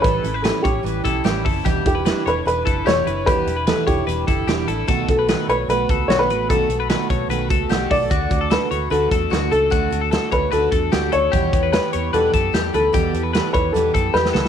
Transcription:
<<
  \new Staff \with { instrumentName = "Upright piano" } { \time 4/4 \key d \major \tempo 4 = 149 b'4 a'8 g'4. r4 | r8 g'4 b'8 b'4 cis''4 | b'4 a'8 g'4. r4 | r8 a'4 b'8 b'4 cis''16 b'8. |
a'2. r8 d''8~ | d''4 b'4 a'4. a'8~ | a'4. b'8 a'4. cis''8~ | cis''4 b'4 a'4. a'8~ |
a'4. b'8 a'4 b'4 | }
  \new Staff \with { instrumentName = "Clean electric guitar" } { \time 4/4 \key d \major a'8. b'16 b'8 cis''8 b'8 a'8 g'8 a'8 | g'8. b'16 b'8 cis''8 b'8 a'8 g'8 b'8 | g'8. b'16 b'8 cis''8 b'8 a'8 g'8 a'8 | a'8. b'16 b'8 cis''8 b'8 a'8 fis'8 b'8 |
a'8. b'16 b'8 cis''8 b'8 a'8 g'8 a'8 | fis'8. a'16 a'8 cis''8 b'8 a'8 fis'8 a'8 | fis'8. a'16 a'8 cis''8 b'8 a'8 g'8 a'8 | g'8. b'16 b'8 cis''8 b'8 a'8 g'8 b'8 |
g'8. b'16 b'8 cis''8 b'8 a'8 g'8 a'8 | }
  \new Staff \with { instrumentName = "Steel-string acoustic guitar" } { \time 4/4 \key d \major <a, e g cis' e'>8 <g cis' e'>8 <a, e g cis' e'>8 <g cis' e'>8 <e g cis' e'>8 <g cis' e'>8 <a, e g cis' e'>8 <g cis' e'>8 | <e, b, e g d' e'>8 <e g d' e'>8 <e, b, e g d' e'>8 <e g d' e'>8 <e g d' e'>8 <e g d' e'>8 <e, b, e g d' e'>8 <e g d' e'>8 | <e, b, e g d' e'>8 <e g d' e'>8 <e, b, e g d' e'>8 <e g d' e'>8 <e g d' e'>8 <e g d' e'>8 <e, b, e g d' e'>8 <e g d' e'>8 | <b, dis a b fis'>8 <a b fis'>8 <b, dis a b fis'>8 <a b fis'>8 <dis a b fis'>8 <a b fis'>8 <b, dis a b fis'>8 <a b fis'>8 |
<b, dis a b fis'>8 <a b fis'>8 <b, dis a b fis'>8 <a b fis'>8 <dis a b fis'>8 <a b fis'>8 <b, dis a b fis'>8 <a b fis'>8 | <d a d' fis'>8 <a d' fis'>8 <d a d' fis'>8 <a d' fis'>8 <d a d' fis'>8 <a d' fis'>8 <d a d' fis'>8 <a d' fis'>8 | <d a d' fis'>8 <a d' fis'>8 <d a d' fis'>8 <a d' fis'>8 <d a d' fis'>8 <a d' fis'>8 <d a d' fis'>8 <a d' fis'>8 | <e, b, e g b g'>8 <e g b g'>8 <e g b g'>8 <e g b g'>8 <e, b, e g b g'>8 <e g b g'>8 <e g b g'>8 <e g b g'>8 |
<e, b, e g b g'>8 <e g b g'>8 <e g b g'>8 <e g b g'>8 <e, b, e g b g'>8 <e g b g'>8 <e g b g'>8 <e g b g'>8 | }
  \new Staff \with { instrumentName = "Fingered electric bass" } { \clef bass \time 4/4 \key d \major a,,8 a,,8. r16 a,,8 a,,8 b,,8 a,,8 fis,,8 | e,,8 e,,8. r16 e,,8 e,,8 fis,,8 e,,8 fis,,8 | e,,8 e,,8. r16 e,,8 e,,8 fis,,8 e,,8 a,,8 | b,,8 b,,8. r16 b,,8 b,,8 cis,8 b,,8 a,,8 |
b,,8 b,,8. r16 b,,8 b,,8 cis,8 b,,8 b,,8 | d,8 d,8. r16 d,8 d,8 e,8 d,8 cis,8 | d,8 d,8. r16 d,8 d,8 e,8 d,8 d,8 | e,8 e,8. r16 e,8 e,8 fis,8 e,8 d,8 |
e,8 e,8. r16 e,8 e,8 fis,8 e,8 cis,8 | }
  \new DrumStaff \with { instrumentName = "Drums" } \drummode { \time 4/4 <hh bd>8 hh8 <hh sn>8 <hh bd>8 hh8 <hh bd>8 <hh sn>8 <hho bd>8 | <hh bd>8 <hh bd>8 <hh sn>8 hh8 hh8 <hh bd>8 <hh sn>8 hh8 | <hh bd>8 hh8 <hh sn>8 <hh bd>8 hh8 <hh bd>8 <hh sn>8 hh8 | <hh bd>8 <hh bd>8 <hh sn>8 hh8 hh8 <hh bd>8 <hh sn>8 hh8 |
<hh bd>8 hh8 <hh sn>8 <hh bd>8 hh8 <hh bd>8 <hh sn>8 <hho bd>8 | <hh bd>8 <hh bd>8 <hh sn>8 hh8 hh8 <hh bd>8 <hh sn>8 hh8 | <hh bd>8 hh8 <hh sn>8 <hh bd>8 hh8 <hh bd>8 <hh sn>8 hh8 | <hh bd>8 <hh bd>8 <hh sn>8 hh8 hh8 <hh bd>8 <hh sn>8 hh8 |
<hh bd>8 hh8 <hh sn>8 <hh bd>8 hh8 <hh bd>8 sn16 sn16 sn8 | }
>>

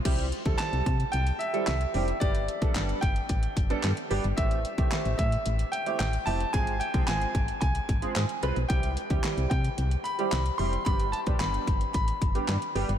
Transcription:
<<
  \new Staff \with { instrumentName = "Grand piano" } { \time 4/4 \key c \major \tempo 4 = 111 r4 a''4 g''8 e''8 e''4 | d''4. g''2 r8 | e''4. e''4 g''8 g''8 a''8 | aes''8 g''8 aes''4 aes''4. r8 |
g''4. g''4 b''8 b''8 c'''8 | b''8 a''8 b''4 b''4. r8 | }
  \new Staff \with { instrumentName = "Grand piano" } { \time 4/4 \key c \major <g c' e' g'>16 r8 <g c' e' a'>4 r4 <g c' e' a'>16 r8 <g c' e' g'>16 r16 | <g b d' g'>16 r8 <g b d' a'>4 r4 <g b d' a'>16 r8 <g b d' g'>16 r16 | <a c' e' g'>16 r8 <a c' e' g'>4 r4 <a c' e' g'>16 r8 <a c' e' g'>16 r16 | <aes c' f' aes'>16 r8 <aes c' f' aes'>4 r4 <aes c' f' aes'>16 r8 <aes c' f' b'>16 r16 |
<g c' e' g'>16 r8 <g c' e' g'>4 r4 <g c' e' g'>16 r8 <g c' e' g'>16 r16 | <g b d' g'>16 r8 <g b d' g'>4 r4 <g b d' g'>16 r8 <g b d' g'>16 r16 | }
  \new Staff \with { instrumentName = "FM bass" } { \clef bass \time 4/4 \key c \major c,8. d,16 r16 c,16 c8 c,8 r8 c,8 f,,8 | g,,8. b,,16 g,,8 g,,8 a,,8 g,,8 g,16 r16 g,,16 g,,16 | a,,8. c,16 r16 a,,16 a,8 a,,8 r8 a,,8 f,,8 | aes,,8. c,16 aes,,8 aes,,8 c,8 aes,,8 aes,16 r16 c,16 b,,16 |
c,8. d,16 r16 c,16 c8 c,8 r8 c,8 f,,8 | g,,8. b,,16 g,,8 g,,8 a,,8 g,,8 g,16 r16 g,,16 g,,16 | }
  \new DrumStaff \with { instrumentName = "Drums" } \drummode { \time 4/4 <cymc hh bd>16 hh16 hh16 <hh bd>16 <hc hh sn>16 hh16 <hh bd>16 hh16 hh16 hh16 hh16 hh16 <hc hh sn>16 hh16 hho16 hh16 | <hh bd>16 hh16 hh16 <hh bd>16 <hc hh sn>16 hh16 <hh bd>16 hh16 <hh bd>16 hh16 <hh bd>16 hh16 <hc hh sn>16 hh16 hho16 hh16 | <hh bd>16 hh16 hh16 <hh bd>16 <hc hh sn>16 hh16 <hh bd>16 hh16 hh16 hh16 hh16 hh16 <hc hh sn>16 hh16 hho16 hh16 | <hh bd>16 hh16 hh16 <hh bd>16 <hc hh sn>16 hh16 <hh bd>16 hh16 <hh bd>16 hh16 <hh bd>16 hh16 <hc hh sn>16 hh16 hh16 hh16 |
<hh bd>16 hh16 hh16 <hh bd>16 <hc hh sn>16 hh16 <hh bd>16 hh16 hh16 hh16 hh16 hh16 <hc hh sn>16 hh16 hho16 hh16 | <hh bd>16 hh16 hh16 <hh bd>16 <hc hh sn>16 hh16 <hh bd>16 hh16 <hh bd>16 hh16 <hh bd>16 hh16 <hc hh sn>16 hh16 hho16 hh16 | }
>>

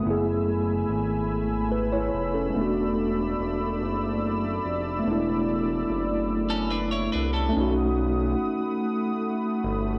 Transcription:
<<
  \new Staff \with { instrumentName = "Analog synth pad" } { \time 6/8 \key e \mixolydian \tempo 4. = 48 << { <a b'' e'''>2.~ | <a b'' e'''>2.~ | <a b'' e'''>2. | <a b'' dis'''>2. | } \\ { gis''2. | d''2.~ | d''2. | fis''2. | } >> }
  \new Staff \with { instrumentName = "Clean electric guitar" } { \time 6/8 \key e \mixolydian r2. | r2. | r4. r16 <cis' a'>16 <d' b'>16 <e' cis''>16 <d' b'>16 <cis' a'>16~ | <cis' a'>16 r2 r8. | }
  \new Staff \with { instrumentName = "Tine electric piano" } { \time 6/8 \key e \mixolydian << { r2 b'16 <e' cis''>8 <cis' a'>16~ | <cis' a'>16 r2 r8. | r2. | r2. | } \\ { <a b e' gis'>2. | <gis a b d' fis'>2. | <a b d' e'>2. | <a cis' dis' fis'>2. | } >> }
  \new Staff \with { instrumentName = "Analog synth bass" } { \clef bass \time 6/8 \key e \mixolydian fis,,4 gis,,4. eis,,8 | e,,4 e,,8 fis,,4 eis,,8 | e,,4 fis,,4. bis,,8 | b,,4 g,,8 r4 g,,8 | }
>>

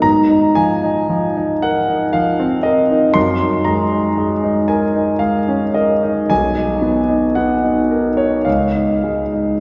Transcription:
\new Staff \with { instrumentName = "Grand piano" } { \time 3/4 \key ges \major \tempo 4 = 57 << { bes''8 aes''4 ges''8 f''8 ees''8 | c'''8 bes''4 aes''8 f''8 ees''8 | aes''4 fis''8. des''16 f''4 | } \\ { aes,16 ees'16 f16 ees'16 f16 ees'16 bes'16 ees'16 f16 c'16 bes'16 ees'16 | ges,16 ees'16 aes16 ees'16 aes16 ees'16 bes'16 ees'16 aes16 des'16 bes'16 ees'16 | b,,16 dis'16 b16 dis'16 b16 dis'16 ais'16 dis'16 des,16 ees'16 aes16 ees'16 | } >> }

